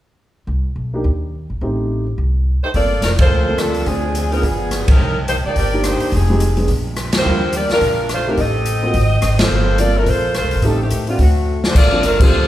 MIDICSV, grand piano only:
0, 0, Header, 1, 2, 480
1, 0, Start_track
1, 0, Key_signature, -2, "minor"
1, 0, Tempo, 281690
1, 818, Time_signature, 4, 2, 24, 8
1, 21257, End_track
2, 0, Start_track
2, 0, Title_t, "Grand piano"
2, 0, Program_c, 0, 0
2, 1594, Note_on_c, 0, 58, 54
2, 1603, Note_on_c, 0, 62, 50
2, 1608, Note_on_c, 0, 63, 52
2, 1624, Note_on_c, 0, 67, 64
2, 1766, Note_off_c, 0, 58, 0
2, 1770, Note_off_c, 0, 62, 0
2, 1773, Note_off_c, 0, 63, 0
2, 1781, Note_off_c, 0, 67, 0
2, 2756, Note_on_c, 0, 57, 47
2, 2764, Note_on_c, 0, 60, 49
2, 2773, Note_on_c, 0, 63, 49
2, 2785, Note_on_c, 0, 67, 54
2, 3457, Note_off_c, 0, 57, 0
2, 3462, Note_off_c, 0, 60, 0
2, 3466, Note_off_c, 0, 63, 0
2, 3472, Note_off_c, 0, 67, 0
2, 4677, Note_on_c, 0, 58, 49
2, 4694, Note_on_c, 0, 60, 43
2, 4702, Note_on_c, 0, 65, 41
2, 4711, Note_on_c, 0, 69, 49
2, 4927, Note_off_c, 0, 58, 0
2, 4935, Note_off_c, 0, 60, 0
2, 4940, Note_off_c, 0, 65, 0
2, 4944, Note_off_c, 0, 69, 0
2, 5926, Note_on_c, 0, 58, 55
2, 5934, Note_on_c, 0, 60, 45
2, 5941, Note_on_c, 0, 65, 47
2, 5947, Note_on_c, 0, 69, 63
2, 6556, Note_off_c, 0, 58, 0
2, 6560, Note_off_c, 0, 60, 0
2, 6563, Note_off_c, 0, 65, 0
2, 6567, Note_off_c, 0, 69, 0
2, 6597, Note_on_c, 0, 60, 50
2, 6604, Note_on_c, 0, 62, 46
2, 6618, Note_on_c, 0, 65, 46
2, 6622, Note_on_c, 0, 68, 56
2, 6848, Note_off_c, 0, 60, 0
2, 6852, Note_off_c, 0, 62, 0
2, 6858, Note_off_c, 0, 65, 0
2, 6860, Note_off_c, 0, 68, 0
2, 7349, Note_on_c, 0, 59, 59
2, 7367, Note_on_c, 0, 62, 51
2, 7369, Note_on_c, 0, 65, 49
2, 7383, Note_on_c, 0, 68, 63
2, 7527, Note_off_c, 0, 59, 0
2, 7536, Note_off_c, 0, 62, 0
2, 7537, Note_off_c, 0, 65, 0
2, 7545, Note_off_c, 0, 68, 0
2, 9764, Note_on_c, 0, 58, 55
2, 9775, Note_on_c, 0, 62, 53
2, 9777, Note_on_c, 0, 63, 53
2, 9791, Note_on_c, 0, 67, 67
2, 10396, Note_off_c, 0, 58, 0
2, 10402, Note_off_c, 0, 62, 0
2, 10403, Note_off_c, 0, 63, 0
2, 10410, Note_off_c, 0, 67, 0
2, 10733, Note_on_c, 0, 60, 51
2, 10734, Note_on_c, 0, 56, 65
2, 10748, Note_on_c, 0, 63, 57
2, 10763, Note_on_c, 0, 67, 65
2, 10900, Note_off_c, 0, 60, 0
2, 10901, Note_off_c, 0, 56, 0
2, 10908, Note_off_c, 0, 63, 0
2, 10915, Note_off_c, 0, 67, 0
2, 11193, Note_on_c, 0, 56, 50
2, 11195, Note_on_c, 0, 59, 47
2, 11211, Note_on_c, 0, 62, 51
2, 11212, Note_on_c, 0, 68, 58
2, 11370, Note_off_c, 0, 56, 0
2, 11371, Note_off_c, 0, 59, 0
2, 11379, Note_off_c, 0, 62, 0
2, 11380, Note_off_c, 0, 68, 0
2, 12347, Note_on_c, 0, 55, 50
2, 12355, Note_on_c, 0, 58, 49
2, 12365, Note_on_c, 0, 62, 47
2, 12372, Note_on_c, 0, 65, 58
2, 12604, Note_off_c, 0, 55, 0
2, 12608, Note_off_c, 0, 58, 0
2, 12613, Note_off_c, 0, 62, 0
2, 12617, Note_off_c, 0, 65, 0
2, 14092, Note_on_c, 0, 57, 64
2, 14104, Note_on_c, 0, 60, 49
2, 14115, Note_on_c, 0, 63, 55
2, 14119, Note_on_c, 0, 67, 66
2, 14259, Note_off_c, 0, 57, 0
2, 14265, Note_off_c, 0, 60, 0
2, 14271, Note_off_c, 0, 63, 0
2, 14273, Note_off_c, 0, 67, 0
2, 15036, Note_on_c, 0, 58, 58
2, 15040, Note_on_c, 0, 60, 56
2, 15055, Note_on_c, 0, 65, 51
2, 15064, Note_on_c, 0, 66, 64
2, 15211, Note_off_c, 0, 58, 0
2, 15213, Note_off_c, 0, 60, 0
2, 15220, Note_off_c, 0, 65, 0
2, 15225, Note_off_c, 0, 66, 0
2, 16681, Note_on_c, 0, 58, 51
2, 16695, Note_on_c, 0, 60, 46
2, 16699, Note_on_c, 0, 65, 46
2, 16710, Note_on_c, 0, 69, 59
2, 17380, Note_off_c, 0, 58, 0
2, 17387, Note_off_c, 0, 60, 0
2, 17389, Note_off_c, 0, 65, 0
2, 17395, Note_off_c, 0, 69, 0
2, 18118, Note_on_c, 0, 57, 53
2, 18129, Note_on_c, 0, 60, 45
2, 18137, Note_on_c, 0, 63, 48
2, 18143, Note_on_c, 0, 67, 55
2, 18366, Note_off_c, 0, 57, 0
2, 18372, Note_off_c, 0, 60, 0
2, 18376, Note_off_c, 0, 63, 0
2, 18379, Note_off_c, 0, 67, 0
2, 18875, Note_on_c, 0, 57, 58
2, 18886, Note_on_c, 0, 60, 53
2, 18897, Note_on_c, 0, 62, 55
2, 18903, Note_on_c, 0, 66, 69
2, 19047, Note_off_c, 0, 57, 0
2, 19053, Note_off_c, 0, 60, 0
2, 19058, Note_off_c, 0, 62, 0
2, 19061, Note_off_c, 0, 66, 0
2, 20301, Note_on_c, 0, 58, 68
2, 20315, Note_on_c, 0, 60, 62
2, 20319, Note_on_c, 0, 62, 67
2, 20319, Note_on_c, 0, 65, 65
2, 20336, Note_on_c, 0, 69, 75
2, 20479, Note_off_c, 0, 58, 0
2, 20487, Note_off_c, 0, 60, 0
2, 20488, Note_off_c, 0, 62, 0
2, 20488, Note_off_c, 0, 65, 0
2, 20497, Note_off_c, 0, 69, 0
2, 20783, Note_on_c, 0, 58, 57
2, 20798, Note_on_c, 0, 62, 55
2, 20799, Note_on_c, 0, 60, 58
2, 20809, Note_on_c, 0, 65, 59
2, 20812, Note_on_c, 0, 67, 63
2, 20959, Note_off_c, 0, 58, 0
2, 20967, Note_off_c, 0, 62, 0
2, 20968, Note_off_c, 0, 60, 0
2, 20973, Note_off_c, 0, 65, 0
2, 20974, Note_off_c, 0, 67, 0
2, 21257, End_track
0, 0, End_of_file